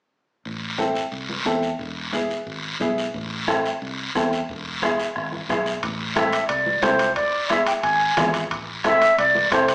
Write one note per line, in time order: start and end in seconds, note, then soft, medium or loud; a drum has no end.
0.45 0.99 A1 medium
0.45 long guiro medium
0.78 1.02 C4 medium
0.78 1.02 E4 medium
0.78 1.03 A4 medium
0.78 high conga medium
0.78 short guiro medium
0.95 short guiro medium
1.12 1.39 C2 medium
1.12 long guiro medium
1.29 high conga medium
1.45 1.73 E2 medium
1.45 1.70 C4 medium
1.45 1.70 E4 medium
1.45 1.70 A4 medium
1.45 high conga medium
1.45 short guiro medium
1.63 short guiro medium
1.79 2.33 E1 medium
1.79 long guiro medium
2.13 2.36 B3 medium
2.13 2.37 E4 medium
2.13 2.37 G#4 medium
2.13 high conga medium
2.13 short guiro medium
2.31 short guiro medium
2.46 2.73 G#1 medium
2.46 long guiro medium
2.80 3.07 B1 medium
2.80 3.04 B3 medium
2.80 3.04 E4 medium
2.80 3.05 G#4 medium
2.80 high conga medium
2.80 short guiro medium
2.98 short guiro medium
3.14 3.68 A1 medium
3.14 bombo low medium
3.14 long guiro medium
3.48 3.71 C4 medium
3.48 3.71 E4 medium
3.48 3.72 A4 medium
3.48 bombo rim medium
3.48 high conga medium
3.48 short guiro medium
3.65 short guiro medium
3.82 4.08 C2 medium
3.82 long guiro medium
4.15 4.42 E2 medium
4.15 4.39 C4 medium
4.15 4.39 E4 medium
4.15 4.39 A4 medium
4.15 bombo low medium
4.15 bombo rim medium
4.15 high conga medium
4.15 short guiro medium
4.33 short guiro medium
4.49 5.03 E1 medium
4.49 bombo low medium
4.49 long guiro medium
4.82 5.06 B3 medium
4.82 5.06 E4 medium
4.82 5.06 G#4 medium
4.82 bombo rim medium
4.82 high conga medium
4.82 short guiro medium
5.00 short guiro medium
5.16 5.43 G#1 medium
5.16 bombo rim medium
5.16 long guiro medium
5.32 high conga medium
5.49 5.76 B1 medium
5.49 5.73 B3 medium
5.49 5.73 E4 medium
5.49 5.73 G#4 medium
5.49 bombo low medium
5.49 bombo rim medium
5.49 high conga medium
5.49 short guiro medium
5.66 short guiro medium
5.83 6.37 A1 medium
5.83 bombo low medium
5.83 high timbale medium
5.83 long guiro medium
6.15 6.40 C4 medium
6.15 6.40 E4 medium
6.15 6.40 A4 medium
6.15 6.47 E5 medium
6.15 bombo rim medium
6.15 high conga medium
6.15 high timbale medium
6.15 short guiro medium
6.33 high timbale medium
6.33 short guiro medium
6.48 6.76 C2 medium
6.48 6.84 D5 medium
6.48 high timbale medium
6.48 long guiro medium
6.66 high conga medium
6.82 7.17 C2 medium
6.82 7.06 C4 medium
6.82 7.07 E4 medium
6.82 7.07 A4 medium
6.82 7.15 C5 medium
6.82 bombo low medium
6.82 bombo rim medium
6.82 high conga medium
6.82 high timbale medium
6.82 low timbale medium
6.82 short guiro medium
6.99 high timbale medium
6.99 short guiro medium
7.15 7.71 E1 medium
7.15 7.47 D5 medium
7.15 bombo low medium
7.15 high timbale medium
7.15 long guiro medium
7.49 7.74 B3 medium
7.49 7.74 E4 medium
7.49 7.75 G#4 medium
7.49 7.65 E5 medium
7.49 bombo rim medium
7.49 high conga medium
7.49 high timbale medium
7.49 short guiro medium
7.66 7.73 G5 medium
7.66 high timbale medium
7.66 short guiro medium
7.82 8.10 G#1 medium
7.82 8.30 G#5 loud
7.82 high timbale medium
7.82 long guiro medium
8.17 8.51 G#1 medium
8.17 8.41 B3 medium
8.17 8.41 E4 medium
8.17 8.41 G#4 medium
8.17 bombo low medium
8.17 bombo rim medium
8.17 high conga medium
8.17 low conga medium
8.17 high timbale medium
8.17 low timbale medium
8.17 short guiro medium
8.34 high timbale medium
8.34 short guiro medium
8.51 9.05 A1 medium
8.51 bombo low medium
8.51 high timbale medium
8.51 long guiro medium
8.84 9.08 C4 medium
8.84 9.09 E4 medium
8.84 9.09 A4 medium
8.84 9.17 E5 loud
8.84 bombo rim medium
8.84 high conga medium
8.84 high timbale medium
8.84 short guiro medium
9.02 high timbale medium
9.02 short guiro medium
9.18 9.45 C2 medium
9.18 9.50 D5 medium
9.18 high timbale medium
9.18 long guiro medium
9.35 high conga medium
9.51 9.75 C2 loud
9.51 9.75 C4 medium
9.51 9.75 E4 medium
9.51 9.75 A4 medium
9.51 9.75 C5 medium
9.51 bombo low medium
9.51 bombo rim medium
9.51 high conga medium
9.51 high timbale medium
9.51 short guiro medium
9.68 high timbale medium
9.68 short guiro medium